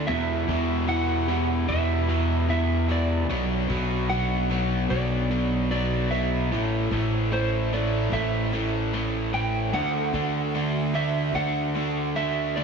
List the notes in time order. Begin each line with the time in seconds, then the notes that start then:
Already playing: E4
0.07 E2 B2 E3 G4 B4 E5 B5
0.48 E2 B2 E3
0.88 E2 B2 E3 F#5
1.28 E2 B2 E3
1.68 E2 B2 E3 E5
2.09 E2 B2 E3
2.49 E2 B2 E3 E5
2.89 E2 B2 E3 D5
3.29 B1 B2 F#3 B3 D4 F#4
3.69 B1 B2 F#3 B3
4.09 B2 F#3 B3 F#5
4.50 B2 F#3 B3
4.90 B1 B2 F#3 B3 D5
5.31 B2 F#3 B3
5.71 B2 F#3 B3 D5
6.11 B2 F#3 B3 E5
6.50 A1 A2 E3 A3 E4 A4 C5
6.91 A1 A2 E3 A3
7.32 A2 E3 A3 C5
7.72 A2 E3 A3 D5
8.12 A1 A2 E3 A3 E5
8.53 A2 E3 A3
8.93 A2 E3 A3
9.33 A2 E3 A3 G5
9.73 D2 D3 A3 D4 F#4 E5 F#5
10.13 D2 D3 A3 D4
10.55 D3 A3 D4
10.95 D3 A3 D4 E5
11.34 D2 D3 A3 D4 F#5
11.75 D3 A3 D4
12.16 D3 A3 D4 E5
12.56 D3 A3 D4 D5